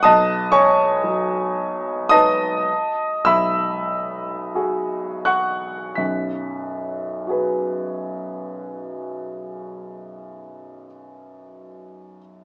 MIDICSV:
0, 0, Header, 1, 2, 480
1, 0, Start_track
1, 0, Tempo, 985222
1, 19, Time_signature, 5, 2, 24, 8
1, 500, Tempo, 1073345
1, 980, Tempo, 1160542
1, 1460, Tempo, 1290323
1, 1940, Tempo, 1428571
1, 2420, Tempo, 1301518
1, 4803, End_track
2, 0, Start_track
2, 0, Title_t, "Grand piano"
2, 0, Program_c, 0, 0
2, 0, Control_c, 0, 64, 127
2, 13, Note_on_c, 0, 87, 99
2, 19, Note_on_c, 0, 81, 87
2, 23, Note_on_c, 0, 35, 66
2, 25, Note_on_c, 0, 75, 81
2, 31, Control_c, 0, 64, 0
2, 119, Control_c, 0, 64, 127
2, 239, Note_off_c, 0, 81, 0
2, 242, Note_off_c, 0, 75, 0
2, 252, Note_on_c, 0, 85, 99
2, 253, Note_off_c, 0, 87, 0
2, 255, Note_on_c, 0, 73, 73
2, 256, Note_on_c, 0, 80, 77
2, 505, Note_on_c, 0, 54, 58
2, 962, Note_off_c, 0, 73, 0
2, 963, Note_off_c, 0, 80, 0
2, 978, Note_on_c, 0, 87, 111
2, 979, Note_off_c, 0, 85, 0
2, 984, Note_on_c, 0, 81, 70
2, 985, Note_on_c, 0, 63, 44
2, 986, Note_on_c, 0, 75, 84
2, 989, Note_on_c, 0, 71, 50
2, 1200, Note_off_c, 0, 35, 0
2, 1201, Note_off_c, 0, 63, 0
2, 1203, Note_off_c, 0, 71, 0
2, 1217, Note_off_c, 0, 54, 0
2, 1227, Control_c, 0, 64, 0
2, 1307, Control_c, 0, 64, 127
2, 1446, Note_off_c, 0, 81, 0
2, 1447, Note_off_c, 0, 75, 0
2, 1455, Note_on_c, 0, 88, 94
2, 1458, Note_on_c, 0, 35, 55
2, 1459, Note_off_c, 0, 87, 0
2, 1461, Note_on_c, 0, 76, 68
2, 1461, Note_on_c, 0, 83, 74
2, 1940, Note_on_c, 0, 66, 54
2, 1942, Note_on_c, 0, 68, 57
2, 2170, Note_off_c, 0, 76, 0
2, 2170, Note_off_c, 0, 83, 0
2, 2175, Note_on_c, 0, 90, 81
2, 2178, Note_on_c, 0, 85, 69
2, 2180, Note_on_c, 0, 78, 69
2, 2181, Note_off_c, 0, 88, 0
2, 2405, Note_off_c, 0, 85, 0
2, 2406, Note_off_c, 0, 78, 0
2, 2407, Note_off_c, 0, 35, 0
2, 2407, Note_off_c, 0, 66, 0
2, 2409, Note_off_c, 0, 68, 0
2, 2412, Note_on_c, 0, 95, 58
2, 2417, Note_off_c, 0, 90, 0
2, 2417, Note_on_c, 0, 35, 48
2, 2419, Note_on_c, 0, 42, 47
2, 2433, Control_c, 0, 64, 0
2, 2529, Control_c, 0, 64, 127
2, 2896, Note_on_c, 0, 66, 44
2, 2906, Note_on_c, 0, 68, 45
2, 2911, Note_on_c, 0, 71, 43
2, 4216, Note_off_c, 0, 95, 0
2, 4222, Note_off_c, 0, 35, 0
2, 4223, Note_off_c, 0, 42, 0
2, 4701, Note_off_c, 0, 66, 0
2, 4710, Note_off_c, 0, 68, 0
2, 4716, Note_off_c, 0, 71, 0
2, 4803, End_track
0, 0, End_of_file